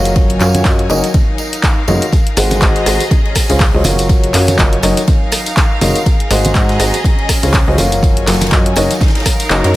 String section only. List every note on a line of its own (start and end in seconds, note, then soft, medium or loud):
0.00 1.39 F#3 medium
0.00 0.32 C#4 medium
0.00 0.32 G#4 medium
0.00 0.32 D#5 medium
0.06 1.39 C#5 medium
0.32 1.39 G#5 medium
0.90 2.53 D#4 medium
1.06 2.53 A#4 medium
1.14 2.53 F5 medium
2.13 4.25 G#4 medium
2.38 4.26 D#5 medium
2.58 3.41 A#5 medium
3.11 4.25 C#4 medium
3.85 5.32 F#3 medium
4.06 5.32 C#5 medium
4.14 5.32 G#5 medium
4.83 6.47 D#4 medium
5.12 6.47 F5 medium
5.17 6.47 A#4 medium
6.06 8.19 G#4 medium
6.25 8.19 D#5 medium
6.51 7.35 A#5 medium
7.04 8.19 C#4 medium
7.78 9.26 F#3 medium
8.04 9.26 C#5 medium
8.04 9.26 G#5 medium
8.77 9.76 D#4 medium
8.85 9.76 F5 medium
9.03 9.76 A#4 medium